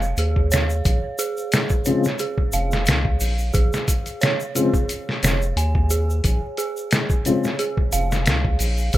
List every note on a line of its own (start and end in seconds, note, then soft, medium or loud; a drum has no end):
0.00 0.14 F1 loud
0.00 0.19 G#4 medium
0.00 0.52 C#5 loud
0.00 2.53 F5 medium
0.00 shaker soft
0.17 0.82 D#2 loud
0.17 0.49 G#4 medium
0.17 closed hi-hat medium
0.17 shaker medium
0.36 kick medium
0.51 0.84 C#5 loud
0.51 snare medium
0.51 closed hi-hat medium
0.51 shaker medium
0.70 shaker soft
0.85 1.01 A#1 loud
0.85 kick loud
0.85 closed hi-hat medium
0.85 shaker soft
1.19 1.83 G#4 medium
1.19 closed hi-hat medium
1.19 shaker medium
1.37 shaker soft
1.52 snare loud
1.52 closed hi-hat medium
1.52 shaker medium
1.69 kick medium
1.69 shaker soft
1.85 2.01 C#3 medium
1.85 2.01 F3 medium
1.85 2.01 G#3 medium
1.85 2.01 C4 medium
1.85 2.17 C#5 medium
1.85 closed hi-hat medium
1.85 shaker medium
2.04 snare soft
2.04 shaker soft
2.19 2.51 G#4 medium
2.19 closed hi-hat medium
2.19 shaker soft
2.38 kick medium
2.52 2.89 F1 medium
2.52 2.74 F5 medium
2.52 closed hi-hat medium
2.52 shaker loud
2.71 snare soft
2.71 shaker soft
2.86 3.17 C#2 medium
2.86 snare loud
2.86 closed hi-hat medium
2.86 shaker medium
3.05 kick medium
3.20 3.51 A#1 medium
3.20 open hi-hat medium
3.20 shaker medium
3.38 shaker soft
3.53 3.71 A#1 medium
3.53 4.19 G#4 medium
3.53 kick loud
3.53 closed hi-hat medium
3.53 shaker soft
3.73 snare soft
3.73 shaker soft
3.88 kick medium
3.88 closed hi-hat medium
3.88 shaker medium
4.06 closed hi-hat soft
4.06 shaker soft
4.21 4.42 C#5 loud
4.21 snare loud
4.21 closed hi-hat medium
4.21 shaker soft
4.40 shaker soft
4.55 4.70 C#3 medium
4.55 4.70 F3 medium
4.55 4.70 G#3 medium
4.55 4.70 C4 medium
4.55 5.20 G#4 medium
4.55 closed hi-hat medium
4.55 shaker medium
4.74 kick medium
4.74 shaker soft
4.89 closed hi-hat medium
4.89 shaker soft
5.09 snare soft
5.23 5.53 F1 loud
5.23 5.56 C#5 medium
5.23 snare loud
5.23 closed hi-hat medium
5.23 shaker medium
5.42 shaker soft
5.56 6.21 D#2 loud
5.56 5.89 G#5 medium
5.56 closed hi-hat medium
5.56 shaker soft
5.75 kick medium
5.90 6.23 G#4 medium
5.90 closed hi-hat medium
5.90 shaker medium
6.10 shaker soft
6.24 6.40 A#1 loud
6.24 kick loud
6.24 closed hi-hat medium
6.24 shaker medium
6.57 7.23 G#4 medium
6.57 closed hi-hat medium
6.57 shaker medium
6.77 shaker soft
6.91 snare loud
6.91 closed hi-hat medium
6.91 shaker soft
7.10 kick medium
7.10 shaker soft
7.25 7.40 C#3 medium
7.25 7.40 F3 medium
7.25 7.40 G#3 medium
7.25 7.41 C4 medium
7.25 7.57 C#5 medium
7.25 closed hi-hat medium
7.25 shaker medium
7.44 snare soft
7.44 shaker soft
7.59 7.90 G#4 medium
7.59 closed hi-hat medium
7.59 shaker soft
7.77 kick medium
7.92 8.28 F1 medium
7.92 8.13 F5 loud
7.92 closed hi-hat medium
7.92 shaker medium
8.12 snare soft
8.12 shaker soft
8.26 8.57 C#2 medium
8.26 snare loud
8.26 closed hi-hat medium
8.26 shaker medium
8.45 kick medium
8.59 8.90 A#1 medium
8.59 open hi-hat medium
8.59 shaker medium
8.78 shaker soft
8.93 8.98 A#1 medium
8.93 8.98 G#4 loud
8.93 kick loud
8.93 closed hi-hat medium
8.93 shaker soft